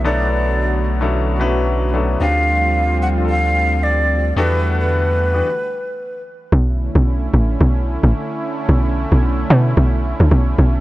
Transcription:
Already playing: B1 B2 D3 F#3 A3 B3 C#4 D4 E4 A4
0.04 B2 F#3 B3 D4 E4 F#4 A4 D5
1.01 B2 F#3 C#4 D4 E4 A4
1.40 B2 F#3 C#4 D4 E4 B4
1.94 B2 F#3 C#4 D4 E4 A4
2.20 D2 D3 F3 G3 C4 D4 F4 G4 F5
3.02 F#5
3.17 D3 C4 D4 F4 G4
3.25 A4
3.29 F5
3.83 D5
4.36 E2 D3 E3 A3 B3 D4 F#4 G4 A4 B4 F#5
4.80 B4
5.33 E3 B3 D4 F#4 G4 B4
6.52 B1 D3 A3 C#4 E4
6.95 B1
7.34 A1
7.61 B1
8.04 A1
8.69 B1
9.12 B1
9.50 B2
9.77 B1
10.20 D2
10.31 B1
10.59 B1

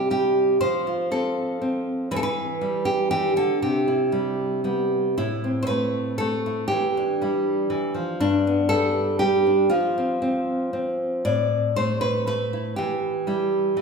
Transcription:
Already playing: C3 C4 E4
0.10 G3 G4
0.61 F3 C5
0.87 F4
1.11 C4 A4
1.61 C4
2.11 E3 B4
2.16 A4
2.23 B4
2.61 G3
2.85 G4
3.11 E3 G4
3.36 D3 A4
3.62 C3 G4
3.88 E4
4.12 G3
4.64 G3 B3
5.18 A2 E4
5.44 C4
5.63 C5
5.67 A3 B4
6.18 A3 A4
6.46 E4
6.68 E3 G4
6.97 D4
7.22 G3 E4
7.70 E3
7.94 F3
8.20 G2 D4
8.47 B3
8.69 G3 A4
9.19 G3 G4
9.47 D4
9.70 F3 F4
9.98 C4
10.22 C4
10.73 C4
11.25 A2 D5
11.76 A3 C5
12.01 B4
12.27 A3 B4
12.53 E4
12.76 E3 G4
13.27 G3 E4
13.77 E3

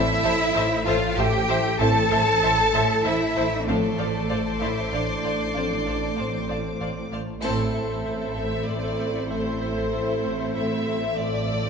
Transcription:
Already playing: A1 A2 E3 A3 C4 E4 A4 C5 E5
0.23 A1 A2 C5 E5 A5
0.54 A1 A2 C5 E5 A5
0.86 A1 A2 F4 C5 E5 F5 A5
1.17 A1 A2 G4 C5 E5 G5 A5
1.48 A1 A3 C5 E5 A5
1.79 A1 A2 E3 C4 A4 C5 E5 A5
2.10 A1 A2 C5 E5 A5
2.42 A1 A2 C5 E5 A5
2.74 A1 A2 C5 E5 A5
3.04 A1 A2 E4 C5 E5 A5
3.36 A1 A3 C5 E5 A5
3.68 A1 A2 F3 A3 C4 D4 A4 C5 D5 F5 A5 C6 D6
3.98 A1 A2 C5 D5 F5
4.29 A1 A2 C5 D5 F5
4.60 A1 A2 E4 C5 D5 E5 F5
4.92 A1 A2 D4 C5 D5 F5
5.23 A1 A3 C5 D5 F5
5.54 A1 A2 F3 C4 D4 C5 D5 F5
5.86 A1 A2 C5 D5 F5
6.17 A1 A2 C4 C5 D5 F5
6.48 A1 A2 C5 D5 F5
6.80 A1 A2 C5 D5 F5
7.12 A1 A3 C5 D5 F5
7.42 A1 A2 A3 C4 E4 A4 C5 E5, triangle
7.75 A2
8.06 A2
8.36 A2 E5
8.66 A2 D5
8.99 A3
9.30 A2 C5
9.62 A2
9.94 A2
10.24 A2
10.55 A2 E5
10.88 A3
11.17 A1 A2 A3 C4 F4 A4 C5 D5 D6 E6
11.50 A2

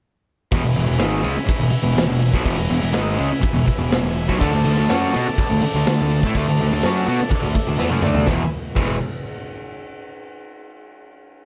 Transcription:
0.51 E1 E2 B2 B4 E5 G#5, kick, ride
0.64 E1 E2 B2
0.76 E1 E2 B2, ride
0.88 E1 E2 B2
0.98 G#1 G#2 D#3 G#3, snare, ride
1.23 C#2 C#3 G#3, ride
1.36 muted distorted electric guitar stroke, muted picked electric bass stroke
1.47 muted distorted electric guitar stroke, muted picked electric bass stroke, kick, ride
1.60 E1 E2 B2
1.70 muted distorted electric guitar stroke, muted picked electric bass stroke, ride
1.83 E1 E2 B2
1.95 E1 E2 B2, snare, ride
2.07 E1 E2 B2
2.22 ride
2.34 B1 B2 F#3, kick
2.44 E1 E2 B2, kick, ride
2.56 E1 E2 B2
2.70 E1 E2 B2, ride
2.81 E1 E2 B2
2.93 G#1 G#2 D#3 G#3, snare, ride
3.17 C#2 C#3 G#3, ride
3.30 muted distorted electric guitar stroke, muted picked electric bass stroke
3.41 muted distorted electric guitar stroke, muted picked electric bass stroke, kick, ride
3.53 E1 E2 B2
3.65 muted distorted electric guitar stroke, muted picked electric bass stroke, kick, ride
3.78 E1 E2 B2
3.90 E1 E2 B2, snare, ride
4.03 E1 E2 B2
4.17 ride
4.28 B1 B2 F#3, kick
4.39 D2 D3 A3 A4 D5 A5, kick, crash
4.53 D2 D3 A3
4.65 D2 D3 A3, ride
4.78 D2 D3 A3
4.89 F#2 F#3 C#4 F#4, snare, ride
5.14 B2 B3 F#4, ride
5.27 muted distorted electric guitar stroke, muted picked electric bass stroke
5.38 muted picked electric bass stroke, muted distorted electric guitar stroke, kick, ride
5.50 D2 D3 A3
5.62 muted picked electric bass stroke, muted distorted electric guitar stroke, ride
5.74 D2 D3 A3
5.87 D2 D3 A3, snare, ride
6.01 D2 D3 A3
6.11 ride
6.23 A2 A3 E4, kick
6.35 D2 D3 A3, kick, ride
6.48 D2 D3 A3
6.59 D2 D3 A3, ride
6.72 D2 D3 A3
6.83 F#2 F#3 C#4 F#4, snare, ride
7.07 B2 B3 F#4 A5, ride
7.20 muted distorted electric guitar stroke, muted picked electric bass stroke
7.30 F#5, muted distorted electric guitar stroke, muted picked electric bass stroke, kick, ride
7.42 D2 D3 A3 E5
7.54 muted distorted electric guitar stroke, muted picked electric bass stroke, kick, ride
7.67 D2 D3 A3
7.78 E2 E3 B3 D5, snare
7.91 F#2 F#3 C#4, high tom
8.02 D2 D3 A3 D4, mid tom
8.15 floor tom
8.26 E1 E2 B2 E3 B4 E5 G#5, kick, snare
8.75 E1 E2 B2 E3, kick, crash

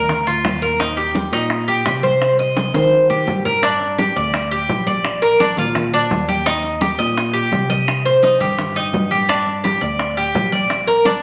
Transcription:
Already playing: D2 A#4
0.09 high bongo, high conga, low conga
0.26 D2 F4, high bongo, high conga
0.44 D#2, high bongo, low bongo, high conga
0.62 A#4, high conga
0.80 D#4, high bongo, high conga
0.97 G4, high bongo, high conga
1.15 high bongo, high conga
1.32 A#2 D#4, high bongo, high conga
1.50 high bongo, high conga
1.68 G4, high conga
1.86 C3, high bongo, low bongo, high conga
2.03 C5, high bongo, high conga
2.21 high bongo, high conga
2.39 D#5, high bongo, high conga
2.57 high bongo, high conga
2.74 D#3 C5, high bongo, high conga, low conga
2.92 high conga
3.09 G4, low bongo, high conga
3.27 G2, low bongo, high conga
3.45 A#4, low bongo, high conga
3.63 D4, high bongo, high conga
3.81 high bongo, high conga
3.98 G4, high bongo, high conga
4.16 D2 D5, high bongo, high conga
4.34 high bongo, high conga
4.51 G4, high conga
4.69 A#1, high bongo, low bongo, high conga
4.87 D5, high bongo, high conga
5.04 high bongo, high conga
5.22 A#4, high bongo, high conga
5.40 D4, high bongo, high conga
5.57 A#2 F4, high bongo, high conga, low conga
5.75 high bongo, high conga, low conga
5.93 D4, high conga
6.10 D#2, high bongo, low bongo, high conga
6.29 G4, high bongo, high conga
6.46 D#4, high bongo, high conga
6.63 high bongo, high conga
6.81 G4, high bongo, high conga
6.99 A#2 D#5, high bongo, high conga
7.17 high bongo, high conga
7.33 G4, high conga
7.52 C3, high bongo, low bongo, high conga
7.70 D#5, high bongo, high conga
7.87 high bongo, high conga
8.05 C5, high bongo, high conga
8.23 D#4, high bongo, high conga
8.40 G2 G4, high bongo, high conga, low conga
8.58 high bongo, high conga, low conga
8.76 D#4, high conga
8.93 G2, high bongo, low bongo, high conga
9.11 G4, high bongo, high conga
9.29 D4, high bongo, high conga
9.46 high bongo, high conga
9.64 G4, high bongo, high conga
9.81 D2 D5, high bongo, high conga
9.99 high bongo, high conga
10.17 G4, high conga
10.34 A#1, high bongo, low bongo, high conga
10.52 D5, high bongo, high conga
10.70 high bongo, high conga
10.87 A#4, high bongo, high conga
11.05 D4, high bongo, high conga

